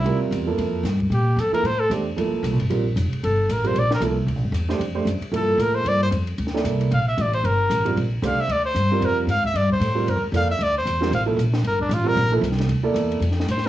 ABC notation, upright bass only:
X:1
M:4/4
L:1/8
Q:"Swing" 1/4=228
K:Gdor
V:1 name="Upright bass" clef=bass
D,,2 E,,2 F,,2 G,,2 | B,,2 F,, z A,,2 E,,2 | D,, z (3C,, B,,, G,,, B,,,2 F,,, z | G,,,2 A,,,2 B,,,2 C,,2 |
(3D,, B,,, G,,, E,,2 F,,2 ^F,, z | G,,2 A,,2 G,,2 F,,2 | D,,2 C,,2 B,,,2 A,,,2 | G,,,2 A,,,2 B,,,2 C,, z |
D,,2 G,,2 F,,2 _A,,2 | G,,2 A,,2 (3G,, F,, D,, F,,2 | D,,2 E,,2 A,,,2 B,,,2 | G,,,2 A,,,2 B,,,2 C,,2 |
D,,2 E,,2 F,,2 A,,2 |]